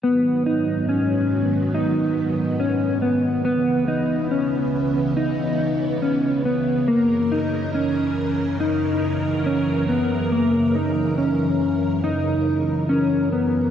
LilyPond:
<<
  \new Staff \with { instrumentName = "Clean electric guitar" } { \time 4/4 \key gis \minor \tempo 4 = 70 b8 dis'8 cis'4 dis'4 cis'8 b8 | b8 dis'8 cis'4 dis'4 cis'8 b8 | ais8 dis'8 cis'4 dis'4 cis'8 b8 | ais8 dis'8 cis'4 dis'4 cis'8 b8 | }
  \new Staff \with { instrumentName = "String machine" } { \clef bass \time 4/4 \key gis \minor << { <gis, fis b>1 | <cis, e b>1 | <fis, e ais'>1~ | <fis, e ais'>1 | } \\ { dis1 | cis1~ | cis1~ | cis1 | } >> }
>>